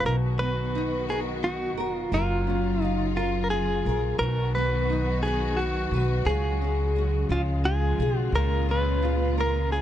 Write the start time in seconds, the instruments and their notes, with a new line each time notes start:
Already playing: nylon-string guitar F#3 C#4 F4 A#4
0.00 clean electric guitar B4
0.05 upright bass B1, nylon-string guitar B2, string section D#3 B3 F#4, clean electric guitar A#4
0.39 nylon-string guitar B3, clean electric guitar B4
0.75 nylon-string guitar D#4
1.09 clean electric guitar G#4, nylon-string guitar A#4
1.43 nylon-string guitar D#4, clean electric guitar F#4
1.77 upright bass F1, nylon-string guitar A#4
1.94 clean electric guitar F4
2.12 upright bass F#1, string section C#3 F#3 F4, nylon-string guitar F#3 A#4, clean electric guitar F4
2.47 nylon-string guitar C#4
2.82 clean electric guitar D#4, nylon-string guitar F4
3.16 clean electric guitar F4, nylon-string guitar A#4
3.44 clean electric guitar A#4
3.50 nylon-string guitar F4, clean electric guitar G#4
3.85 upright bass A#1, nylon-string guitar A#4
4.18 upright bass B1, nylon-string guitar B2, string section D#3 F#3 B3 F#4, clean electric guitar A#4
4.55 nylon-string guitar B3, clean electric guitar B4
4.90 nylon-string guitar D#4
5.23 clean electric guitar G#4, nylon-string guitar B4
5.57 nylon-string guitar D#4, clean electric guitar F#4
5.91 upright bass B1, nylon-string guitar B4
6.25 upright bass C#2, string section C#3 G#3, nylon-string guitar C#3 G#4, clean electric guitar G#4
6.62 nylon-string guitar C#4
6.96 nylon-string guitar F#4
7.29 upright bass C#2, string section C#3 F3 F4, nylon-string guitar C#3, clean electric guitar F4
7.65 nylon-string guitar F4, clean electric guitar G#4
7.98 upright bass B1, nylon-string guitar G#4
8.18 clean electric guitar F#4
8.32 upright bass C#2, string section A#2 C#3, nylon-string guitar C#3, clean electric guitar A#4
8.69 nylon-string guitar C#4, clean electric guitar B4
9.02 nylon-string guitar F4
9.38 nylon-string guitar A#4, clean electric guitar A#4
9.72 nylon-string guitar F4, clean electric guitar G#4